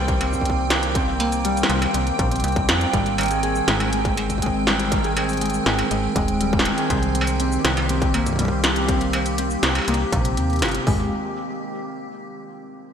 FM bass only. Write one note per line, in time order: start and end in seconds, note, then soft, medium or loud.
0.00 1.64 C2 loud
1.70 1.87 C2 loud
1.94 2.12 C2 medium
2.19 2.44 A#1 loud
2.44 2.70 C2 medium
2.69 2.86 F2 medium
2.93 3.62 G#1 medium
3.68 5.60 G#1 loud
5.66 5.83 G#1 loud
5.91 6.08 G#1 medium
6.16 6.72 D#1 loud
6.90 7.59 C2 loud
7.65 9.57 C2 loud
9.63 9.80 C2 loud
9.88 10.05 C2 medium
10.13 10.39 A#1 loud
10.38 10.64 D#2 loud
10.62 10.79 G1 loud
10.87 11.10 G#1 loud